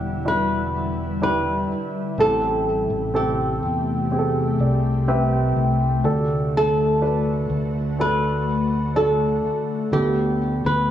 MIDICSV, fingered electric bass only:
0, 0, Header, 1, 2, 480
1, 0, Start_track
1, 0, Tempo, 967742
1, 1080, Time_signature, 4, 2, 24, 8
1, 5410, End_track
2, 0, Start_track
2, 0, Title_t, "Fingered electric bass"
2, 0, Program_c, 0, 33
2, 0, Note_on_c, 0, 28, 63
2, 821, Note_off_c, 0, 28, 0
2, 1081, Note_on_c, 0, 33, 73
2, 1420, Note_off_c, 0, 33, 0
2, 1438, Note_on_c, 0, 33, 67
2, 1779, Note_off_c, 0, 33, 0
2, 1799, Note_on_c, 0, 40, 60
2, 2260, Note_off_c, 0, 40, 0
2, 2279, Note_on_c, 0, 36, 60
2, 2740, Note_off_c, 0, 36, 0
2, 2759, Note_on_c, 0, 36, 61
2, 2983, Note_off_c, 0, 36, 0
2, 2997, Note_on_c, 0, 38, 80
2, 3699, Note_off_c, 0, 38, 0
2, 3718, Note_on_c, 0, 38, 72
2, 4659, Note_off_c, 0, 38, 0
2, 4920, Note_on_c, 0, 38, 66
2, 5260, Note_off_c, 0, 38, 0
2, 5280, Note_on_c, 0, 38, 67
2, 5410, Note_off_c, 0, 38, 0
2, 5410, End_track
0, 0, End_of_file